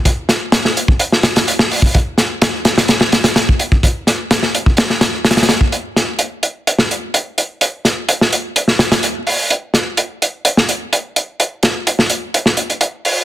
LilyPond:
\new DrumStaff \with { instrumentName = "Drums" } \drummode { \time 4/4 \tempo 4 = 127 <hh bd>8 <hh sn>8 <hh sn>16 sn16 hh16 bd16 hh16 sn16 <hh sn>16 <hh sn>16 hh16 sn16 hho16 bd16 | <hh bd>8 <hh sn>8 <hh sn>8 <hh sn>16 <hh sn>16 <hh sn>16 sn16 <hh sn>16 <hh sn>16 <hh sn>16 bd16 hh16 bd16 | <hh bd>8 <hh sn>8 <hh sn>16 sn16 hh16 bd16 <hh sn>16 sn16 <hh sn>8 <hh sn>32 <hh sn>32 <hh sn>32 <hh sn>32 <hh sn>16 bd16 | hh8 <hh sn>8 hh8 hh8 hh16 sn16 hh8 hh8 hh8 |
hh8 <hh sn>8 hh16 sn16 hh8 hh16 sn16 <hh sn>16 <hh sn>16 hh8 hho8 | hh8 <hh sn>8 hh8 hh8 hh16 sn16 hh8 hh8 hh8 | hh8 <hh sn>8 hh16 sn16 hh8 hh16 sn16 hh16 hh16 hh8 hho8 | }